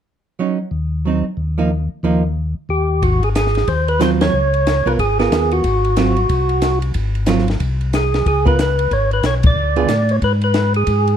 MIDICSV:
0, 0, Header, 1, 5, 480
1, 0, Start_track
1, 0, Tempo, 327332
1, 578, Time_signature, 4, 2, 24, 8
1, 16377, End_track
2, 0, Start_track
2, 0, Title_t, "Tonewheel organ"
2, 0, Program_c, 0, 16
2, 3959, Note_on_c, 0, 67, 64
2, 4442, Note_on_c, 0, 66, 75
2, 4447, Note_off_c, 0, 67, 0
2, 4739, Note_off_c, 0, 66, 0
2, 4751, Note_on_c, 0, 68, 70
2, 4828, Note_off_c, 0, 68, 0
2, 4922, Note_on_c, 0, 68, 79
2, 5399, Note_on_c, 0, 72, 91
2, 5410, Note_off_c, 0, 68, 0
2, 5698, Note_off_c, 0, 72, 0
2, 5699, Note_on_c, 0, 71, 75
2, 5882, Note_off_c, 0, 71, 0
2, 5893, Note_on_c, 0, 72, 91
2, 6021, Note_off_c, 0, 72, 0
2, 6180, Note_on_c, 0, 73, 94
2, 7145, Note_on_c, 0, 71, 76
2, 7162, Note_off_c, 0, 73, 0
2, 7224, Note_off_c, 0, 71, 0
2, 7328, Note_on_c, 0, 68, 90
2, 7598, Note_off_c, 0, 68, 0
2, 7615, Note_on_c, 0, 68, 66
2, 8101, Note_on_c, 0, 66, 79
2, 8106, Note_off_c, 0, 68, 0
2, 9957, Note_off_c, 0, 66, 0
2, 11655, Note_on_c, 0, 68, 76
2, 12118, Note_off_c, 0, 68, 0
2, 12135, Note_on_c, 0, 68, 77
2, 12398, Note_off_c, 0, 68, 0
2, 12428, Note_on_c, 0, 71, 73
2, 12606, Note_off_c, 0, 71, 0
2, 12623, Note_on_c, 0, 71, 84
2, 13094, Note_on_c, 0, 73, 89
2, 13100, Note_off_c, 0, 71, 0
2, 13356, Note_off_c, 0, 73, 0
2, 13394, Note_on_c, 0, 71, 67
2, 13568, Note_off_c, 0, 71, 0
2, 13580, Note_on_c, 0, 73, 90
2, 13706, Note_off_c, 0, 73, 0
2, 13881, Note_on_c, 0, 74, 93
2, 14827, Note_on_c, 0, 73, 88
2, 14847, Note_off_c, 0, 74, 0
2, 14904, Note_off_c, 0, 73, 0
2, 15017, Note_on_c, 0, 71, 82
2, 15142, Note_off_c, 0, 71, 0
2, 15307, Note_on_c, 0, 71, 74
2, 15738, Note_off_c, 0, 71, 0
2, 15783, Note_on_c, 0, 68, 85
2, 16377, Note_off_c, 0, 68, 0
2, 16377, End_track
3, 0, Start_track
3, 0, Title_t, "Hollow-body jazz guitar"
3, 0, Program_c, 1, 26
3, 575, Note_on_c, 1, 54, 44
3, 586, Note_on_c, 1, 61, 45
3, 590, Note_on_c, 1, 63, 45
3, 843, Note_off_c, 1, 54, 0
3, 848, Note_off_c, 1, 61, 0
3, 851, Note_off_c, 1, 63, 0
3, 1545, Note_on_c, 1, 54, 39
3, 1569, Note_on_c, 1, 60, 36
3, 1576, Note_on_c, 1, 63, 42
3, 1809, Note_off_c, 1, 54, 0
3, 1821, Note_off_c, 1, 60, 0
3, 1825, Note_off_c, 1, 63, 0
3, 2313, Note_on_c, 1, 53, 47
3, 2324, Note_on_c, 1, 58, 51
3, 2329, Note_on_c, 1, 63, 57
3, 2482, Note_off_c, 1, 53, 0
3, 2487, Note_off_c, 1, 58, 0
3, 2490, Note_off_c, 1, 63, 0
3, 2989, Note_on_c, 1, 53, 46
3, 2999, Note_on_c, 1, 58, 52
3, 3002, Note_on_c, 1, 63, 52
3, 3253, Note_off_c, 1, 53, 0
3, 3257, Note_off_c, 1, 58, 0
3, 3259, Note_off_c, 1, 63, 0
3, 5857, Note_on_c, 1, 54, 54
3, 5871, Note_on_c, 1, 60, 49
3, 5881, Note_on_c, 1, 65, 61
3, 6344, Note_off_c, 1, 54, 0
3, 6351, Note_off_c, 1, 60, 0
3, 6356, Note_off_c, 1, 65, 0
3, 7126, Note_on_c, 1, 59, 61
3, 7137, Note_on_c, 1, 65, 56
3, 7143, Note_on_c, 1, 70, 64
3, 7292, Note_off_c, 1, 59, 0
3, 7298, Note_off_c, 1, 65, 0
3, 7301, Note_off_c, 1, 70, 0
3, 7616, Note_on_c, 1, 59, 57
3, 7630, Note_on_c, 1, 70, 62
3, 7632, Note_on_c, 1, 65, 56
3, 8240, Note_off_c, 1, 59, 0
3, 8247, Note_off_c, 1, 70, 0
3, 8248, Note_off_c, 1, 65, 0
3, 8759, Note_on_c, 1, 54, 46
3, 8766, Note_on_c, 1, 60, 54
3, 8775, Note_on_c, 1, 65, 52
3, 9022, Note_off_c, 1, 54, 0
3, 9025, Note_off_c, 1, 60, 0
3, 9030, Note_off_c, 1, 65, 0
3, 10661, Note_on_c, 1, 54, 55
3, 10668, Note_on_c, 1, 60, 52
3, 10679, Note_on_c, 1, 65, 66
3, 10932, Note_off_c, 1, 54, 0
3, 10936, Note_off_c, 1, 60, 0
3, 10942, Note_off_c, 1, 65, 0
3, 12398, Note_on_c, 1, 59, 57
3, 12411, Note_on_c, 1, 65, 54
3, 12413, Note_on_c, 1, 70, 59
3, 12568, Note_off_c, 1, 59, 0
3, 12575, Note_off_c, 1, 65, 0
3, 12576, Note_off_c, 1, 70, 0
3, 14318, Note_on_c, 1, 50, 62
3, 14319, Note_on_c, 1, 59, 62
3, 14320, Note_on_c, 1, 65, 55
3, 14325, Note_on_c, 1, 68, 68
3, 14486, Note_off_c, 1, 50, 0
3, 14486, Note_off_c, 1, 59, 0
3, 14487, Note_off_c, 1, 65, 0
3, 14489, Note_off_c, 1, 68, 0
3, 16377, End_track
4, 0, Start_track
4, 0, Title_t, "Tonewheel organ"
4, 0, Program_c, 2, 16
4, 1043, Note_on_c, 2, 39, 65
4, 1808, Note_off_c, 2, 39, 0
4, 2008, Note_on_c, 2, 39, 65
4, 2771, Note_off_c, 2, 39, 0
4, 2979, Note_on_c, 2, 39, 65
4, 3738, Note_off_c, 2, 39, 0
4, 3944, Note_on_c, 2, 39, 65
4, 4434, Note_on_c, 2, 32, 75
4, 4701, Note_off_c, 2, 39, 0
4, 5344, Note_off_c, 2, 32, 0
4, 5394, Note_on_c, 2, 39, 70
4, 6305, Note_off_c, 2, 39, 0
4, 6357, Note_on_c, 2, 37, 79
4, 7076, Note_off_c, 2, 37, 0
4, 7123, Note_on_c, 2, 36, 58
4, 7297, Note_off_c, 2, 36, 0
4, 7315, Note_on_c, 2, 32, 57
4, 7760, Note_off_c, 2, 32, 0
4, 7783, Note_on_c, 2, 39, 60
4, 8234, Note_off_c, 2, 39, 0
4, 8271, Note_on_c, 2, 32, 82
4, 9185, Note_off_c, 2, 32, 0
4, 9233, Note_on_c, 2, 36, 65
4, 10145, Note_off_c, 2, 36, 0
4, 10193, Note_on_c, 2, 32, 75
4, 11104, Note_off_c, 2, 32, 0
4, 11151, Note_on_c, 2, 36, 68
4, 12062, Note_off_c, 2, 36, 0
4, 12109, Note_on_c, 2, 37, 73
4, 13020, Note_off_c, 2, 37, 0
4, 13068, Note_on_c, 2, 32, 72
4, 13514, Note_off_c, 2, 32, 0
4, 13532, Note_on_c, 2, 35, 67
4, 13985, Note_off_c, 2, 35, 0
4, 14015, Note_on_c, 2, 38, 81
4, 14465, Note_off_c, 2, 38, 0
4, 14502, Note_on_c, 2, 45, 64
4, 14948, Note_off_c, 2, 45, 0
4, 14984, Note_on_c, 2, 44, 65
4, 15892, Note_off_c, 2, 44, 0
4, 15941, Note_on_c, 2, 44, 75
4, 16377, Note_off_c, 2, 44, 0
4, 16377, End_track
5, 0, Start_track
5, 0, Title_t, "Drums"
5, 4436, Note_on_c, 9, 36, 29
5, 4436, Note_on_c, 9, 51, 50
5, 4582, Note_off_c, 9, 36, 0
5, 4582, Note_off_c, 9, 51, 0
5, 4733, Note_on_c, 9, 51, 34
5, 4880, Note_off_c, 9, 51, 0
5, 4918, Note_on_c, 9, 44, 52
5, 4918, Note_on_c, 9, 51, 54
5, 4925, Note_on_c, 9, 38, 56
5, 5064, Note_off_c, 9, 44, 0
5, 5064, Note_off_c, 9, 51, 0
5, 5072, Note_off_c, 9, 38, 0
5, 5085, Note_on_c, 9, 38, 25
5, 5204, Note_on_c, 9, 51, 36
5, 5232, Note_off_c, 9, 38, 0
5, 5240, Note_on_c, 9, 38, 33
5, 5350, Note_off_c, 9, 51, 0
5, 5386, Note_off_c, 9, 38, 0
5, 5389, Note_on_c, 9, 51, 45
5, 5395, Note_on_c, 9, 36, 29
5, 5535, Note_off_c, 9, 51, 0
5, 5542, Note_off_c, 9, 36, 0
5, 5692, Note_on_c, 9, 51, 33
5, 5838, Note_off_c, 9, 51, 0
5, 5874, Note_on_c, 9, 44, 50
5, 5874, Note_on_c, 9, 51, 56
5, 5881, Note_on_c, 9, 38, 50
5, 6020, Note_off_c, 9, 44, 0
5, 6020, Note_off_c, 9, 51, 0
5, 6028, Note_off_c, 9, 38, 0
5, 6172, Note_on_c, 9, 51, 51
5, 6179, Note_on_c, 9, 38, 65
5, 6319, Note_off_c, 9, 51, 0
5, 6326, Note_off_c, 9, 38, 0
5, 6651, Note_on_c, 9, 51, 34
5, 6798, Note_off_c, 9, 51, 0
5, 6843, Note_on_c, 9, 44, 48
5, 6843, Note_on_c, 9, 51, 56
5, 6851, Note_on_c, 9, 38, 53
5, 6990, Note_off_c, 9, 44, 0
5, 6990, Note_off_c, 9, 51, 0
5, 6997, Note_off_c, 9, 38, 0
5, 7143, Note_on_c, 9, 51, 37
5, 7289, Note_off_c, 9, 51, 0
5, 7318, Note_on_c, 9, 36, 29
5, 7319, Note_on_c, 9, 51, 51
5, 7465, Note_off_c, 9, 36, 0
5, 7466, Note_off_c, 9, 51, 0
5, 7620, Note_on_c, 9, 51, 29
5, 7627, Note_on_c, 9, 38, 46
5, 7767, Note_off_c, 9, 51, 0
5, 7774, Note_off_c, 9, 38, 0
5, 7800, Note_on_c, 9, 44, 49
5, 7800, Note_on_c, 9, 51, 57
5, 7808, Note_on_c, 9, 38, 59
5, 7947, Note_off_c, 9, 44, 0
5, 7947, Note_off_c, 9, 51, 0
5, 7954, Note_off_c, 9, 38, 0
5, 8085, Note_on_c, 9, 51, 40
5, 8231, Note_off_c, 9, 51, 0
5, 8268, Note_on_c, 9, 51, 53
5, 8275, Note_on_c, 9, 36, 30
5, 8415, Note_off_c, 9, 51, 0
5, 8422, Note_off_c, 9, 36, 0
5, 8571, Note_on_c, 9, 51, 36
5, 8717, Note_off_c, 9, 51, 0
5, 8748, Note_on_c, 9, 44, 49
5, 8748, Note_on_c, 9, 51, 61
5, 8755, Note_on_c, 9, 38, 54
5, 8894, Note_off_c, 9, 44, 0
5, 8894, Note_off_c, 9, 51, 0
5, 8901, Note_off_c, 9, 38, 0
5, 9040, Note_on_c, 9, 51, 35
5, 9186, Note_off_c, 9, 51, 0
5, 9228, Note_on_c, 9, 51, 51
5, 9234, Note_on_c, 9, 36, 29
5, 9375, Note_off_c, 9, 51, 0
5, 9380, Note_off_c, 9, 36, 0
5, 9518, Note_on_c, 9, 51, 34
5, 9665, Note_off_c, 9, 51, 0
5, 9701, Note_on_c, 9, 44, 54
5, 9701, Note_on_c, 9, 51, 62
5, 9709, Note_on_c, 9, 38, 52
5, 9848, Note_off_c, 9, 44, 0
5, 9848, Note_off_c, 9, 51, 0
5, 9855, Note_off_c, 9, 38, 0
5, 10001, Note_on_c, 9, 51, 39
5, 10147, Note_off_c, 9, 51, 0
5, 10178, Note_on_c, 9, 51, 55
5, 10191, Note_on_c, 9, 36, 27
5, 10324, Note_off_c, 9, 51, 0
5, 10338, Note_off_c, 9, 36, 0
5, 10484, Note_on_c, 9, 51, 35
5, 10631, Note_off_c, 9, 51, 0
5, 10651, Note_on_c, 9, 44, 59
5, 10651, Note_on_c, 9, 51, 58
5, 10658, Note_on_c, 9, 38, 59
5, 10797, Note_off_c, 9, 44, 0
5, 10797, Note_off_c, 9, 51, 0
5, 10805, Note_off_c, 9, 38, 0
5, 10832, Note_on_c, 9, 38, 25
5, 10966, Note_on_c, 9, 51, 39
5, 10979, Note_off_c, 9, 38, 0
5, 10995, Note_on_c, 9, 38, 37
5, 11113, Note_off_c, 9, 51, 0
5, 11141, Note_off_c, 9, 38, 0
5, 11144, Note_on_c, 9, 51, 51
5, 11153, Note_on_c, 9, 36, 31
5, 11291, Note_off_c, 9, 51, 0
5, 11300, Note_off_c, 9, 36, 0
5, 11449, Note_on_c, 9, 51, 32
5, 11596, Note_off_c, 9, 51, 0
5, 11632, Note_on_c, 9, 44, 51
5, 11632, Note_on_c, 9, 51, 57
5, 11639, Note_on_c, 9, 38, 55
5, 11779, Note_off_c, 9, 44, 0
5, 11779, Note_off_c, 9, 51, 0
5, 11786, Note_off_c, 9, 38, 0
5, 11937, Note_on_c, 9, 51, 36
5, 11944, Note_on_c, 9, 38, 41
5, 12083, Note_off_c, 9, 51, 0
5, 12090, Note_off_c, 9, 38, 0
5, 12115, Note_on_c, 9, 36, 30
5, 12117, Note_on_c, 9, 51, 46
5, 12262, Note_off_c, 9, 36, 0
5, 12263, Note_off_c, 9, 51, 0
5, 12412, Note_on_c, 9, 36, 40
5, 12416, Note_on_c, 9, 51, 33
5, 12559, Note_off_c, 9, 36, 0
5, 12562, Note_off_c, 9, 51, 0
5, 12594, Note_on_c, 9, 44, 57
5, 12594, Note_on_c, 9, 51, 57
5, 12602, Note_on_c, 9, 38, 51
5, 12741, Note_off_c, 9, 44, 0
5, 12741, Note_off_c, 9, 51, 0
5, 12748, Note_off_c, 9, 38, 0
5, 12886, Note_on_c, 9, 51, 40
5, 13033, Note_off_c, 9, 51, 0
5, 13068, Note_on_c, 9, 51, 45
5, 13071, Note_on_c, 9, 36, 30
5, 13215, Note_off_c, 9, 51, 0
5, 13218, Note_off_c, 9, 36, 0
5, 13361, Note_on_c, 9, 51, 32
5, 13508, Note_off_c, 9, 51, 0
5, 13539, Note_on_c, 9, 44, 54
5, 13539, Note_on_c, 9, 51, 53
5, 13547, Note_on_c, 9, 38, 55
5, 13686, Note_off_c, 9, 44, 0
5, 13686, Note_off_c, 9, 51, 0
5, 13693, Note_off_c, 9, 38, 0
5, 13832, Note_on_c, 9, 51, 57
5, 13844, Note_on_c, 9, 36, 66
5, 13978, Note_off_c, 9, 51, 0
5, 13991, Note_off_c, 9, 36, 0
5, 14315, Note_on_c, 9, 51, 32
5, 14461, Note_off_c, 9, 51, 0
5, 14495, Note_on_c, 9, 44, 51
5, 14495, Note_on_c, 9, 51, 59
5, 14502, Note_on_c, 9, 38, 54
5, 14641, Note_off_c, 9, 44, 0
5, 14641, Note_off_c, 9, 51, 0
5, 14649, Note_off_c, 9, 38, 0
5, 14793, Note_on_c, 9, 51, 38
5, 14939, Note_off_c, 9, 51, 0
5, 14984, Note_on_c, 9, 51, 44
5, 14989, Note_on_c, 9, 36, 32
5, 15131, Note_off_c, 9, 51, 0
5, 15135, Note_off_c, 9, 36, 0
5, 15272, Note_on_c, 9, 51, 35
5, 15419, Note_off_c, 9, 51, 0
5, 15454, Note_on_c, 9, 44, 42
5, 15454, Note_on_c, 9, 51, 53
5, 15462, Note_on_c, 9, 38, 54
5, 15601, Note_off_c, 9, 44, 0
5, 15601, Note_off_c, 9, 51, 0
5, 15608, Note_off_c, 9, 38, 0
5, 15751, Note_on_c, 9, 51, 36
5, 15898, Note_off_c, 9, 51, 0
5, 15935, Note_on_c, 9, 51, 54
5, 15942, Note_on_c, 9, 36, 29
5, 16082, Note_off_c, 9, 51, 0
5, 16089, Note_off_c, 9, 36, 0
5, 16239, Note_on_c, 9, 51, 34
5, 16377, Note_off_c, 9, 51, 0
5, 16377, End_track
0, 0, End_of_file